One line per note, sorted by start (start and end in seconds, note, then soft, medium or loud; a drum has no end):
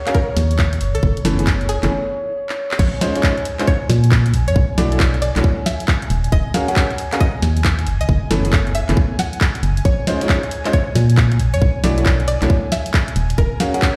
0.00 2.80 C#5 medium
0.07 0.14 C#4 medium
0.07 0.14 F#4 medium
0.07 0.14 G#4 medium
0.07 0.14 A#4 medium
0.07 0.14 F5 loud
0.07 clap medium
0.07 closed hi-hat medium
0.14 0.33 A#4 medium
0.14 kick loud
0.37 0.82 D#2 loud
0.37 snare medium
0.37 open hi-hat loud
0.51 closed hi-hat medium
0.59 kick loud
0.59 clap loud
0.73 closed hi-hat medium
0.81 0.96 F#1 loud
0.81 open hi-hat medium
0.95 1.01 C#2 medium
0.95 1.06 A4 medium
0.95 closed hi-hat medium
1.03 1.13 F#1 loud
1.03 kick loud
1.17 closed hi-hat medium
1.25 1.77 F#1 medium
1.25 1.36 E3 medium
1.25 1.36 A3 medium
1.25 1.36 B3 medium
1.25 1.36 C#4 medium
1.25 1.36 A4 loud
1.25 snare medium
1.25 open hi-hat loud
1.39 1.46 E3 medium
1.39 1.46 A3 medium
1.39 1.46 B3 medium
1.39 1.46 C#4 medium
1.39 1.46 G#4 medium
1.39 closed hi-hat medium
1.47 kick loud
1.47 clap loud
1.47 snare soft
1.61 closed hi-hat soft
1.69 1.88 G#4 loud
1.69 open hi-hat loud
1.83 1.89 F#1 medium
1.83 1.91 E3 medium
1.83 1.91 A3 medium
1.83 1.91 B3 medium
1.83 1.91 C#4 medium
1.83 1.91 G#4 loud
1.83 clap medium
1.83 closed hi-hat medium
2.49 clap medium
2.71 clap medium
2.79 2.90 A#1 loud
2.79 2.95 C#5 loud
2.79 13.96 G#5 medium
2.79 kick loud
2.79 crash loud
3.01 3.13 G#3 medium
3.01 3.13 C#4 medium
3.01 3.13 D#4 medium
3.01 3.13 F4 medium
3.01 3.13 C5 loud
3.01 snare medium
3.01 open hi-hat loud
3.15 3.31 G#3 loud
3.15 3.31 C#4 medium
3.15 3.31 D#4 medium
3.15 3.31 F4 medium
3.15 3.31 C#5 loud
3.15 closed hi-hat medium
3.23 kick loud
3.23 clap loud
3.38 closed hi-hat soft
3.45 open hi-hat loud
3.59 3.67 G#3 medium
3.59 3.67 C#4 medium
3.59 3.67 D#4 medium
3.59 3.67 F4 medium
3.59 3.67 C5 loud
3.59 clap medium
3.59 closed hi-hat medium
3.67 3.86 C#5 medium
3.67 kick loud
3.89 4.35 A#2 loud
3.89 snare medium
3.89 open hi-hat loud
4.04 closed hi-hat medium
4.12 kick loud
4.12 clap loud
4.26 closed hi-hat medium
4.34 4.49 A#1 loud
4.34 open hi-hat loud
4.48 4.54 F2 medium
4.48 4.59 C#5 medium
4.48 closed hi-hat medium
4.56 4.66 B1 loud
4.56 kick loud
4.78 5.30 B1 medium
4.78 4.88 A3 loud
4.78 4.89 D4 medium
4.78 4.89 E4 medium
4.78 4.89 F#4 medium
4.78 4.89 D5 loud
4.78 snare medium
4.78 open hi-hat loud
4.92 4.99 A3 medium
4.92 4.99 D4 medium
4.92 4.99 E4 medium
4.92 4.99 F#4 medium
4.92 4.99 C#5 medium
4.92 closed hi-hat medium
5.00 kick loud
5.00 clap loud
5.14 closed hi-hat soft
5.22 5.41 D5 loud
5.22 open hi-hat loud
5.36 5.42 B1 medium
5.36 5.44 A3 medium
5.36 5.44 D4 medium
5.36 5.44 E4 medium
5.36 5.44 F#4 medium
5.36 5.44 C#5 loud
5.36 clap medium
5.36 closed hi-hat medium
5.44 kick loud
5.66 5.82 E5 medium
5.66 snare medium
5.66 open hi-hat loud
5.80 closed hi-hat medium
5.88 kick loud
5.88 clap loud
6.02 closed hi-hat soft
6.10 6.28 D#1 loud
6.10 open hi-hat medium
6.24 closed hi-hat medium
6.32 6.43 D#1 loud
6.32 6.48 D#5 loud
6.32 kick loud
6.54 6.66 C#4 medium
6.54 6.66 F#4 medium
6.54 6.66 G#4 medium
6.54 6.66 A#4 medium
6.54 6.66 F5 loud
6.54 snare medium
6.54 open hi-hat loud
6.68 6.84 C#4 loud
6.68 6.84 F#4 medium
6.68 6.84 G#4 medium
6.68 6.84 A#4 medium
6.68 6.84 F#5 loud
6.68 closed hi-hat medium
6.76 kick loud
6.76 clap loud
6.91 closed hi-hat soft
6.98 open hi-hat loud
7.12 7.20 C#4 medium
7.12 7.20 F#4 medium
7.12 7.20 G#4 medium
7.12 7.20 A#4 medium
7.12 7.20 F5 loud
7.12 clap medium
7.12 closed hi-hat medium
7.20 7.39 D#5 loud
7.20 kick loud
7.42 7.88 D#2 loud
7.42 snare medium
7.42 open hi-hat loud
7.57 closed hi-hat medium
7.64 kick loud
7.64 clap loud
7.79 closed hi-hat soft
7.87 8.02 F#1 medium
7.87 open hi-hat medium
8.01 8.07 C#2 medium
8.01 8.12 D#5 loud
8.01 closed hi-hat medium
8.09 8.19 F#1 loud
8.09 kick loud
8.31 8.83 F#1 medium
8.31 8.41 E3 loud
8.31 8.41 A3 medium
8.31 8.41 B3 medium
8.31 8.41 C#4 medium
8.31 8.41 A4 loud
8.31 snare medium
8.31 open hi-hat loud
8.45 8.52 E3 medium
8.45 8.52 A3 medium
8.45 8.52 B3 medium
8.45 8.52 C#4 medium
8.45 8.52 G#4 medium
8.45 closed hi-hat medium
8.53 kick loud
8.53 clap loud
8.67 closed hi-hat soft
8.75 8.94 E5 loud
8.75 open hi-hat medium
8.89 8.95 F#1 medium
8.89 8.96 E3 medium
8.89 8.96 A3 medium
8.89 8.96 B3 medium
8.89 8.96 C#4 medium
8.89 8.96 G#4 loud
8.89 clap medium
8.89 closed hi-hat medium
8.97 kick loud
9.19 9.35 F#5 medium
9.19 snare medium
9.19 open hi-hat loud
9.33 closed hi-hat medium
9.41 kick loud
9.41 clap loud
9.55 closed hi-hat medium
9.63 9.81 F#1 medium
9.63 open hi-hat medium
9.77 closed hi-hat medium
9.85 9.96 A#1 loud
9.85 10.01 C#5 loud
9.85 kick loud
10.07 10.19 G#3 medium
10.07 10.19 C#4 medium
10.07 10.19 D#4 medium
10.07 10.19 F4 medium
10.07 10.19 C5 loud
10.07 snare medium
10.07 open hi-hat loud
10.21 10.37 G#3 loud
10.21 10.36 C#4 medium
10.21 10.36 D#4 medium
10.21 10.36 F4 medium
10.21 10.36 C#5 loud
10.21 closed hi-hat medium
10.29 kick loud
10.29 clap loud
10.43 closed hi-hat soft
10.51 open hi-hat medium
10.65 10.73 G#3 medium
10.65 10.73 C#4 medium
10.65 10.73 D#4 medium
10.65 10.73 F4 medium
10.65 10.73 C5 loud
10.65 clap medium
10.65 closed hi-hat medium
10.73 10.92 C#5 medium
10.73 kick loud
10.95 11.41 A#2 loud
10.95 snare medium
10.95 open hi-hat loud
11.10 closed hi-hat medium
11.17 kick loud
11.17 clap loud
11.32 closed hi-hat medium
11.39 11.55 A#1 medium
11.39 open hi-hat medium
11.54 11.60 F2 medium
11.54 11.64 C#5 medium
11.54 closed hi-hat medium
11.62 11.72 B1 loud
11.62 kick loud
11.84 12.36 B1 medium
11.84 11.94 A3 medium
11.84 11.94 D4 medium
11.84 11.94 E4 medium
11.84 11.94 F#4 medium
11.84 11.94 D5 loud
11.84 snare medium
11.84 open hi-hat loud
11.98 12.05 A3 medium
11.98 12.05 D4 medium
11.98 12.05 E4 medium
11.98 12.05 F#4 medium
11.98 12.05 C#5 medium
11.98 closed hi-hat medium
12.06 kick loud
12.06 clap loud
12.20 closed hi-hat soft
12.28 12.47 D5 medium
12.28 open hi-hat loud
12.42 12.48 B1 medium
12.42 12.49 A3 medium
12.42 12.49 D4 medium
12.42 12.49 E4 medium
12.42 12.49 F#4 medium
12.42 12.49 C#5 loud
12.42 clap medium
12.42 closed hi-hat medium
12.50 kick loud
12.72 12.88 E5 medium
12.72 snare medium
12.72 open hi-hat loud
12.86 closed hi-hat medium
12.94 kick loud
12.94 clap loud
13.08 closed hi-hat medium
13.16 13.34 D#1 loud
13.16 open hi-hat loud
13.30 closed hi-hat medium
13.38 13.49 D#1 loud
13.38 13.54 A#4 loud
13.38 kick loud
13.60 13.72 C#4 medium
13.60 13.72 F#4 medium
13.60 13.72 G#4 medium
13.60 13.72 A#4 medium
13.60 13.72 F5 loud
13.60 snare medium
13.60 open hi-hat loud
13.74 13.89 C#4 loud
13.74 13.89 F#4 medium
13.74 13.89 G#4 medium
13.74 13.89 A#4 medium
13.74 13.89 F#5 loud
13.74 closed hi-hat medium
13.82 kick loud
13.82 clap loud